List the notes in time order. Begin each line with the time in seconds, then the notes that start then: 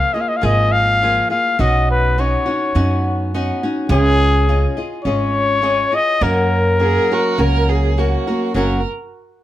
Already playing: F3 A#3 F4 G#4 F5
0.14 A#3 F4 G#4 D#5
0.21 F5
0.29 D#5
0.37 F5
0.41 G#1 F3 A#3 F4 G#4
0.46 D#5
0.72 F5
1.02 F3 A#3 F4 G#4
1.30 A#3 F4 G#4 F5
1.59 B1 B2 B3 C#4 D#4 F#4 D#5
1.91 B4
2.18 B3 C#4 D#4 F#4 C#5
2.46 C#4 D#4 F#4
2.75 F#2 B3 C#4 D#4 F#4
3.34 B3 C#4 D#4 F#4
3.63 C#4 D#4 F#4
3.89 C#2 C#4 F4 G#4 D#5
4.48 C#4 F4 G#4 D#5
4.77 F4 G#4 D#5
5.04 G#1 C#4 F4 G#4 C#5 D#5
5.62 C#4 F4 G#4 D#5
5.92 F4 G#4 D#5
6.21 F#2 F#3 A#3 C#4 F#4 A#4
6.80 A#3 C#4 F#4 G#4 A#4
7.12 A#3 C#4 F#4 A#4
7.38 C#2 A#3 C#4 F#4 A#4
7.69 G#4
7.98 A#3 C#4 F#4 A#4
8.27 A#3 C#4 F#4 A#4
8.54 F#1 F#2 C#3 F#3 A#3 C#4 F#4 A#4